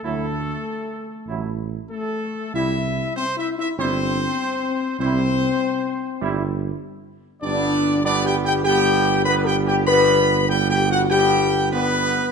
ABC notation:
X:1
M:4/4
L:1/8
Q:1/4=98
K:Glyd
V:1 name="Trumpet section"
A4- A z A2 | e2 (3=c e e c4 | =c4- c z3 | d2 (3d g g g2 (3b g g |
b2 (3g g f g2 B2 |]
V:2 name="French horn section"
A,4- A, z A,2 | E2 (3=C E E C4 | =C4- C z3 | D2 (3D G G G2 (3B G G |
B2 (3G G F G2 B,2 |]
V:3 name="Trombone section"
[F,E] z3 [F,E] z3 | [G,E] z3 [G,E] z3 | [G,E] z3 [G,E] z3 | [G,B,]2 [G,B,]2 [G,B,]2 [G,B,]2 |
[G,B,]2 [G,B,]2 [G,B,]2 [G,B,]2 |]
V:4 name="Tuba" clef=bass
D,,2 z2 A,,,2 z2 | =C,,2 z2 G,,,2 z2 | =C,,2 z2 G,,,2 z2 | G,,,8- |
G,,,8 |]